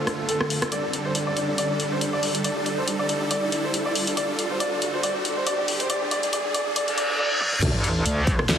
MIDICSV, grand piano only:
0, 0, Header, 1, 2, 480
1, 0, Start_track
1, 0, Key_signature, -1, "minor"
1, 0, Tempo, 431655
1, 798, Time_signature, 4, 2, 24, 8
1, 9543, End_track
2, 0, Start_track
2, 0, Title_t, "Grand piano"
2, 0, Program_c, 0, 0
2, 78, Note_on_c, 0, 69, 61
2, 151, Note_off_c, 0, 69, 0
2, 209, Note_on_c, 0, 69, 60
2, 269, Note_off_c, 0, 69, 0
2, 318, Note_on_c, 0, 69, 90
2, 391, Note_off_c, 0, 69, 0
2, 558, Note_on_c, 0, 69, 60
2, 631, Note_off_c, 0, 69, 0
2, 691, Note_on_c, 0, 69, 63
2, 750, Note_off_c, 0, 69, 0
2, 799, Note_on_c, 0, 74, 84
2, 871, Note_off_c, 0, 74, 0
2, 931, Note_on_c, 0, 62, 59
2, 990, Note_off_c, 0, 62, 0
2, 1038, Note_on_c, 0, 62, 56
2, 1111, Note_off_c, 0, 62, 0
2, 1169, Note_on_c, 0, 72, 79
2, 1229, Note_off_c, 0, 72, 0
2, 1278, Note_on_c, 0, 62, 57
2, 1351, Note_off_c, 0, 62, 0
2, 1410, Note_on_c, 0, 74, 84
2, 1470, Note_off_c, 0, 74, 0
2, 1519, Note_on_c, 0, 62, 57
2, 1591, Note_off_c, 0, 62, 0
2, 1651, Note_on_c, 0, 62, 58
2, 1710, Note_off_c, 0, 62, 0
2, 1759, Note_on_c, 0, 74, 87
2, 1831, Note_off_c, 0, 74, 0
2, 1891, Note_on_c, 0, 62, 57
2, 1950, Note_off_c, 0, 62, 0
2, 1998, Note_on_c, 0, 62, 59
2, 2071, Note_off_c, 0, 62, 0
2, 2131, Note_on_c, 0, 72, 80
2, 2190, Note_off_c, 0, 72, 0
2, 2238, Note_on_c, 0, 62, 59
2, 2311, Note_off_c, 0, 62, 0
2, 2370, Note_on_c, 0, 74, 87
2, 2430, Note_off_c, 0, 74, 0
2, 2477, Note_on_c, 0, 62, 56
2, 2550, Note_off_c, 0, 62, 0
2, 2609, Note_on_c, 0, 62, 58
2, 2669, Note_off_c, 0, 62, 0
2, 2716, Note_on_c, 0, 74, 90
2, 2789, Note_off_c, 0, 74, 0
2, 2848, Note_on_c, 0, 62, 60
2, 2908, Note_off_c, 0, 62, 0
2, 2956, Note_on_c, 0, 62, 61
2, 3030, Note_off_c, 0, 62, 0
2, 3087, Note_on_c, 0, 72, 82
2, 3148, Note_off_c, 0, 72, 0
2, 3196, Note_on_c, 0, 62, 57
2, 3270, Note_off_c, 0, 62, 0
2, 3328, Note_on_c, 0, 74, 90
2, 3389, Note_off_c, 0, 74, 0
2, 3437, Note_on_c, 0, 62, 59
2, 3510, Note_off_c, 0, 62, 0
2, 3569, Note_on_c, 0, 62, 60
2, 3629, Note_off_c, 0, 62, 0
2, 3677, Note_on_c, 0, 74, 91
2, 3750, Note_off_c, 0, 74, 0
2, 3808, Note_on_c, 0, 62, 62
2, 3869, Note_off_c, 0, 62, 0
2, 3918, Note_on_c, 0, 62, 61
2, 3991, Note_off_c, 0, 62, 0
2, 4049, Note_on_c, 0, 72, 85
2, 4109, Note_off_c, 0, 72, 0
2, 4157, Note_on_c, 0, 62, 59
2, 4230, Note_off_c, 0, 62, 0
2, 4288, Note_on_c, 0, 74, 90
2, 4348, Note_off_c, 0, 74, 0
2, 4396, Note_on_c, 0, 62, 59
2, 4469, Note_off_c, 0, 62, 0
2, 4529, Note_on_c, 0, 62, 61
2, 4589, Note_off_c, 0, 62, 0
2, 4635, Note_on_c, 0, 74, 94
2, 4709, Note_off_c, 0, 74, 0
2, 4768, Note_on_c, 0, 62, 65
2, 4828, Note_off_c, 0, 62, 0
2, 4876, Note_on_c, 0, 62, 64
2, 4950, Note_off_c, 0, 62, 0
2, 5007, Note_on_c, 0, 72, 89
2, 5068, Note_off_c, 0, 72, 0
2, 5115, Note_on_c, 0, 74, 95
2, 5189, Note_off_c, 0, 74, 0
2, 5247, Note_on_c, 0, 62, 63
2, 5308, Note_off_c, 0, 62, 0
2, 5355, Note_on_c, 0, 62, 64
2, 5429, Note_off_c, 0, 62, 0
2, 5488, Note_on_c, 0, 72, 88
2, 5548, Note_off_c, 0, 72, 0
2, 5596, Note_on_c, 0, 74, 94
2, 5670, Note_off_c, 0, 74, 0
2, 5729, Note_on_c, 0, 62, 65
2, 5789, Note_off_c, 0, 62, 0
2, 5837, Note_on_c, 0, 62, 63
2, 5910, Note_off_c, 0, 62, 0
2, 5969, Note_on_c, 0, 72, 89
2, 6029, Note_off_c, 0, 72, 0
2, 6076, Note_on_c, 0, 74, 101
2, 6150, Note_off_c, 0, 74, 0
2, 6210, Note_on_c, 0, 62, 65
2, 6269, Note_off_c, 0, 62, 0
2, 6318, Note_on_c, 0, 62, 62
2, 6391, Note_off_c, 0, 62, 0
2, 6449, Note_on_c, 0, 72, 90
2, 6509, Note_off_c, 0, 72, 0
2, 6558, Note_on_c, 0, 74, 100
2, 6631, Note_off_c, 0, 74, 0
2, 6690, Note_on_c, 0, 62, 68
2, 6750, Note_off_c, 0, 62, 0
2, 6797, Note_on_c, 0, 74, 101
2, 6870, Note_off_c, 0, 74, 0
2, 6930, Note_on_c, 0, 62, 65
2, 6990, Note_off_c, 0, 62, 0
2, 7038, Note_on_c, 0, 74, 103
2, 7111, Note_off_c, 0, 74, 0
2, 7170, Note_on_c, 0, 62, 65
2, 7229, Note_off_c, 0, 62, 0
2, 7277, Note_on_c, 0, 74, 102
2, 7350, Note_off_c, 0, 74, 0
2, 7409, Note_on_c, 0, 62, 67
2, 7469, Note_off_c, 0, 62, 0
2, 7517, Note_on_c, 0, 74, 102
2, 7590, Note_off_c, 0, 74, 0
2, 7649, Note_on_c, 0, 62, 65
2, 7709, Note_off_c, 0, 62, 0
2, 7758, Note_on_c, 0, 74, 105
2, 7831, Note_off_c, 0, 74, 0
2, 7889, Note_on_c, 0, 62, 67
2, 7949, Note_off_c, 0, 62, 0
2, 7997, Note_on_c, 0, 74, 101
2, 8070, Note_off_c, 0, 74, 0
2, 8129, Note_on_c, 0, 62, 67
2, 8189, Note_off_c, 0, 62, 0
2, 8236, Note_on_c, 0, 74, 102
2, 8310, Note_off_c, 0, 74, 0
2, 8369, Note_on_c, 0, 62, 66
2, 8429, Note_off_c, 0, 62, 0
2, 9543, End_track
0, 0, End_of_file